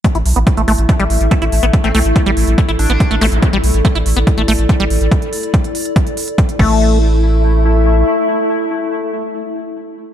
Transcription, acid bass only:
X:1
M:4/4
L:1/16
Q:1/4=142
K:C
V:1 name="Acid bass"
A, E z B, z A, A, z2 G, z2 A, E z B, | z A, A, z2 G, z2 A, E z B, z A, A, z | z G, z2 A, E z B, z A, A, z2 G, z2 | z12 z2 A,2- |
A,2 z12 z2 | z16 |]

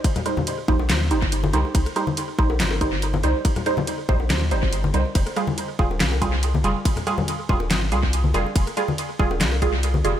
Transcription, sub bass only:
X:1
M:4/4
L:1/8
Q:"Swing 16ths" 1/4=141
K:Cm
V:1 name="Sub bass" clef=bass
z3 B,,, E,, G,,,2 C,, | C,, z2 B,,, G,,,3 C,, | z3 B,,, E,, G,,,2 C,, | F,,, z2 E,,, C,,3 F,,, |
z3 E,,, A,,, C,,2 F,,, | F,,, z2 E,,, C,,3 F,,, |]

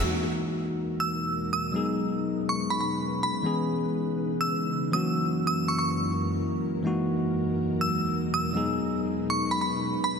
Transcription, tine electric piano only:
X:1
M:4/4
L:1/8
Q:1/4=141
K:Elyd
V:1 name="Tine electric piano"
[E,G,A,DF]8 | [F,G,B,DG]8 | [E,G,B,CG]6- [E,G,B,CG] [E,F,A,CF]- | [E,F,A,CF]8 |
[E,G,A,DF]8 | [F,G,B,DG]8 |]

